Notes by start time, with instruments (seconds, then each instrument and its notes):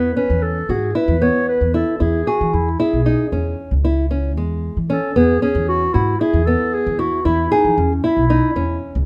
Already playing: upright bass E2, nylon-string guitar B3, clarinet B4
0.16 nylon-string guitar C#4, clarinet B4
0.30 upright bass E2
0.42 clarinet A4
0.69 upright bass G#2, nylon-string guitar F#4, clarinet G#4
0.95 nylon-string guitar E4, clarinet B4
1.08 upright bass E2
1.22 nylon-string guitar B3, clarinet C#5
1.48 clarinet B4
1.61 upright bass E2
1.74 nylon-string guitar E4, clarinet A4
2.00 upright bass E2, nylon-string guitar E4, clarinet G#4
2.27 clarinet F#4, nylon-string guitar G#4
2.41 upright bass E3
2.53 upright bass E2, clarinet E4
2.79 nylon-string guitar E4, clarinet G#4
2.93 upright bass B1
3.06 nylon-string guitar D#4
3.32 upright bass E2, nylon-string guitar C#4
3.71 upright bass C#2
3.85 nylon-string guitar E4
4.11 nylon-string guitar C#4
4.37 upright bass E2, nylon-string guitar G#3
4.77 upright bass E3
4.89 nylon-string guitar C#4, clarinet A4
5.16 upright bass E2, nylon-string guitar B3, clarinet G#4
5.42 nylon-string guitar C#4, clarinet G#4
5.55 upright bass E2
5.68 clarinet F#4
5.94 upright bass G#2, clarinet E4, nylon-string guitar F#4
6.20 nylon-string guitar E4, clarinet G#4
6.33 upright bass E2
6.46 nylon-string guitar B3, clarinet A4
6.73 clarinet G#4
6.87 upright bass E2
6.99 nylon-string guitar E4, clarinet F#4
7.25 upright bass E2, nylon-string guitar E4, clarinet E4
7.52 clarinet D#4, nylon-string guitar G#4
7.65 upright bass E3
7.78 upright bass E2, clarinet C#4
8.04 nylon-string guitar E4, clarinet E4
8.17 upright bass B1
8.30 nylon-string guitar D#4
8.56 upright bass E2, nylon-string guitar C#4
8.95 upright bass C#2